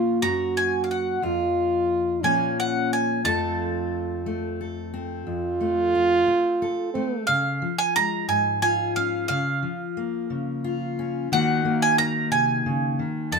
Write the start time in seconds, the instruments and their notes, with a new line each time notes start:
Already playing: steel-string acoustic guitar A#2 F3 A#3 C#4 F4, french horn F4
0.21 steel-string acoustic guitar F#2 F#4, french horn F#4, mandolin A#5
0.57 mandolin G#5
0.84 mandolin F5
0.91 mandolin F#5
1.22 steel-string acoustic guitar F2 F4, french horn F4
2.23 steel-string acoustic guitar A#2 F3 A#3 C#4, french horn C#4, mandolin G#5
2.60 mandolin F#5
2.93 mandolin G#5
3.24 steel-string acoustic guitar F2 F3 A3 C4 A4, french horn F4, mandolin A5
4.26 steel-string acoustic guitar A3
4.61 steel-string acoustic guitar A4
4.94 steel-string acoustic guitar C4
5.26 steel-string acoustic guitar F2, french horn F4
5.61 steel-string acoustic guitar A3
5.95 steel-string acoustic guitar C4
6.27 muted steel-string acoustic guitar stroke
6.62 steel-string acoustic guitar A4
6.93 steel-string acoustic guitar A3, french horn C4
7.27 steel-string acoustic guitar C#3, mandolin F5
7.62 steel-string acoustic guitar F3
7.78 mandolin G#5
7.96 steel-string acoustic guitar G#3, mandolin A#5
8.28 steel-string acoustic guitar G#2, mandolin G#5
8.62 steel-string acoustic guitar F4, mandolin G#5
8.96 steel-string acoustic guitar C#4, mandolin F5
9.28 steel-string acoustic guitar C#3, mandolin F5
9.62 steel-string acoustic guitar F3
9.97 steel-string acoustic guitar A#3
10.30 steel-string acoustic guitar C#3
10.64 steel-string acoustic guitar F4
10.99 steel-string acoustic guitar C#4
11.32 steel-string acoustic guitar D#3 A#3 D#4 F#4, mandolin F#5
11.65 steel-string acoustic guitar A#3
11.82 mandolin G#5
11.98 steel-string acoustic guitar D#4, mandolin A#5
12.31 steel-string acoustic guitar C3, mandolin G#5
12.66 steel-string acoustic guitar C#3
12.99 steel-string acoustic guitar D#3
13.32 steel-string acoustic guitar F2, mandolin A5